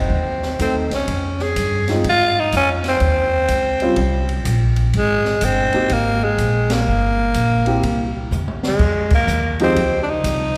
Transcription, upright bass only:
0.09 0.57 D#2 medium
0.59 0.73 E2 medium
0.73 0.89 D#2 medium
0.90 1.06 C2 medium
1.08 1.55 F2 medium
1.56 2.03 G2 medium
2.05 2.51 G#2 medium
2.52 3.00 F2 medium
3.01 3.48 D#2 medium
3.49 3.96 C#2 medium
3.97 4.44 C2 medium
4.45 4.92 A#1 medium
4.94 5.41 G#1 medium
5.42 5.71 G1 medium
5.74 muted upright bass stroke soft
5.90 6.37 G#1 medium
6.38 6.85 A#1 medium
6.87 7.34 G1 medium
7.35 7.82 A#1 medium
7.83 8.30 C2 medium
8.31 8.78 E2 medium
8.79 9.26 F2 medium
9.27 9.74 D#2 medium
9.76 10.23 C#2 medium
10.24 10.57 C2 loud

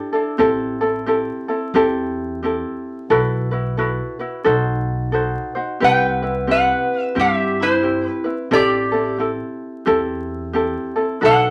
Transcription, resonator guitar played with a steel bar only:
5.84 6.47 B4 medium
5.84 6.51 G5 loud
6.51 7.14 B4 medium
6.51 7.02 F#5 medium
7.02 7.20 E5 medium
7.20 7.57 G4 medium
7.20 7.62 E5 medium
7.62 8.24 E4 medium
7.62 8.06 C5 medium
8.06 8.24 B4 medium
8.53 9.17 G4 medium
8.53 9.16 D5 loud
11.25 11.50 A4 medium
11.25 11.50 F#5 loud

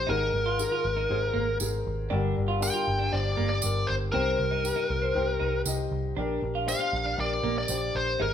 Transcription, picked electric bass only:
0.09 0.29 G#1 loud
0.34 0.65 G#1 medium
0.85 1.05 G#1 medium
1.10 1.31 G#1 loud
1.36 1.56 G#1 medium
1.61 1.81 G#1 loud
1.87 2.07 G#1 medium
2.12 2.33 G1 loud
2.38 2.68 G1 medium
2.88 3.08 G1 medium
3.13 3.34 G1 loud
3.39 3.59 G1 medium
3.64 3.84 G1 medium
3.90 4.10 G1 medium
4.15 4.35 C2 loud
4.40 4.71 C2 medium
4.90 5.11 C2 medium
5.16 5.36 C2 loud
5.41 5.62 C2 medium
5.66 5.87 C2 medium
5.92 6.12 C2 medium
6.17 6.38 A#1 loud
6.42 6.74 A#1 loud
6.93 7.14 A#1 medium
7.18 7.39 A#1 loud
7.43 7.64 A#1 medium
7.69 7.90 A#1 medium
7.95 8.15 A#1 medium
8.21 8.34 G#1 loud

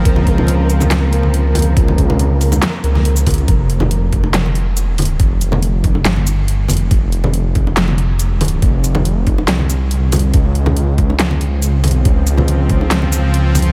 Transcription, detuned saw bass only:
0.05 0.47 C#2 loud
0.48 1.32 C#2 loud
1.34 2.18 C#2 loud
2.19 2.61 C#2 loud
2.84 3.47 C#2 loud
3.48 4.32 F1 medium
4.34 5.18 F1 loud
5.20 6.04 F1 loud
6.05 6.68 G1 loud
6.70 6.89 F1 loud
6.91 7.75 F1 loud
7.76 8.61 F1 loud
8.62 9.46 F1 loud
9.48 10.32 C2 loud
10.34 11.18 C#2 medium
11.19 11.78 C#2 loud
11.78 12.04 C2 loud
12.05 12.89 C#2 medium
12.91 13.54 C#2 loud
13.55 13.72 C#2 loud

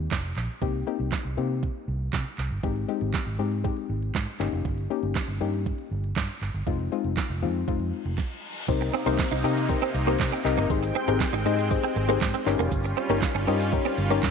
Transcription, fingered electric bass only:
0.11 0.31 F1 medium
0.37 0.47 A#1 medium
0.62 0.82 C2 loud
1.00 1.10 C2 medium
1.25 1.35 C2 medium
1.37 1.68 C3 medium
1.88 2.08 C2 medium
2.13 2.23 C3 medium
2.38 2.48 C2 medium
2.51 2.61 G1 medium
2.63 2.84 G#1 loud
3.01 3.11 G#1 medium
3.26 3.36 G#1 medium
3.39 3.69 G#2 medium
3.89 4.10 G#1 medium
4.15 4.25 G#2 loud
4.40 4.50 G1 medium
4.52 4.62 F1 medium
4.65 4.85 G1 loud
5.03 5.13 G1 medium
5.28 5.38 G1 medium
5.41 5.71 G2 medium
5.91 6.11 G1 medium
6.16 6.26 G2 medium
6.42 6.52 G1 medium
6.54 6.64 G1 medium
6.67 6.87 F1 loud
7.04 7.15 F1 medium
7.30 7.44 F1 loud
7.42 7.62 F2 medium
7.68 7.78 F1 medium
7.80 7.90 F2 medium
8.05 8.15 F1 medium
8.68 8.88 C2 loud
9.06 9.16 C2 loud
9.31 9.41 C2 medium
9.44 9.74 C3 loud
9.94 10.15 C2 loud
10.20 10.30 C3 loud
10.45 10.55 C2 medium
10.57 10.68 G1 medium
10.70 10.90 G#1 loud
11.08 11.18 G#1 loud
11.33 11.43 G#1 loud
11.46 11.76 G#2 loud
11.96 12.16 G#1 medium
12.21 12.31 G#2 loud
12.46 12.57 G1 loud
12.59 12.69 F1 medium
12.72 12.92 G1 loud
13.09 13.20 G1 loud
13.35 13.45 G1 loud
13.47 13.78 G2 loud
13.98 14.18 G1 loud
14.23 14.31 G2 loud

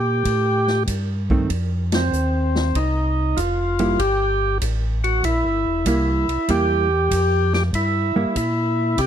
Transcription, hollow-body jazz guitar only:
1.31 1.49 D#3 medium
1.31 1.49 A3 medium
1.31 1.49 C4 medium
3.80 3.98 G3 medium
3.80 3.98 A#3 medium
3.80 3.98 E4 medium
5.86 6.25 G3 medium
5.86 6.25 A#3 medium
5.86 6.25 E4 medium
6.49 6.87 G3 soft
6.49 6.88 A#3 medium
6.49 6.88 E4 medium
8.16 8.34 G3 medium
8.16 8.34 A#3 medium
8.16 8.34 E4 medium

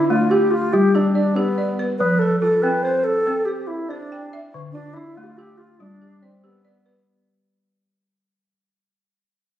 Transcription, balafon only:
0.00 0.52 D4 medium
0.00 0.31 F4 medium
0.10 0.52 A3 medium
0.31 0.94 G4 medium
0.74 1.16 G3 medium
0.95 1.35 G4 medium
1.15 1.57 D5 medium
1.36 1.79 G4 medium
1.58 2.21 D5 medium
1.79 2.21 B4 medium
2.00 2.43 F3 medium
2.22 2.85 A4 medium
2.42 3.06 F4 medium
2.63 3.06 C4 medium
2.85 3.48 B4 medium
3.27 3.69 C4 medium
3.48 3.89 C5 medium
3.90 4.33 C5 medium
4.12 4.75 G5 medium
4.33 4.75 E5 medium
4.54 4.96 D3 medium
4.75 5.38 F4 medium
4.97 5.60 D4 medium
5.17 5.60 A3 medium
5.39 6.00 G4 medium
5.80 6.23 G3 medium
6.02 6.43 G4 medium
6.23 6.63 D5 medium
6.44 6.86 G4 medium
6.65 7.28 D5 medium
6.86 7.28 B4 medium

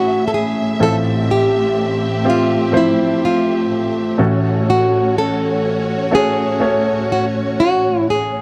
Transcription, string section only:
0.00 8.42 A2 soft
0.00 8.42 A3 soft
0.00 0.77 C#4 soft
0.00 0.77 E4 soft
0.00 4.16 E5 medium
0.80 4.16 C4 medium
0.80 4.16 G4 soft
4.18 8.42 C#4 medium
4.18 8.42 F#4 medium
4.18 8.42 C#5 medium

